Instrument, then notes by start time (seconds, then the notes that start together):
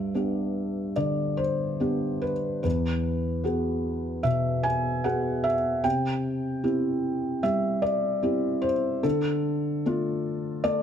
felt piano
Already playing: G2 E5
0.14 B3 D4 G4
0.96 D3 D5
1.37 C5
1.80 B3 D4 G4
2.22 B4
2.63 E2 B4
3.44 B3 F#4 G#4
4.23 B2 E5
4.63 G#5
5.04 B3 F#4 G#4 F#5
5.44 E5
5.84 C3 G5
6.64 C4 E4 G4
7.43 G3 E5
7.82 D5
8.23 C4 E4 G4
8.62 C5
9.03 D3 A4
9.86 A3 D4 F4
10.64 A3 D5